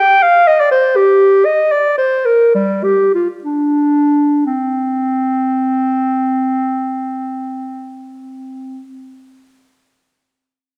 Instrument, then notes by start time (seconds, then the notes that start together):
clarinet
0.00 G5
0.22 F5
0.47 D#5
0.60 D5
0.71 C5
0.96 G4
1.45 D#5
1.71 D5
1.97 C5
2.25 A#4
2.54 G3
2.84 G4
3.14 F4
3.44 D4
4.46 C4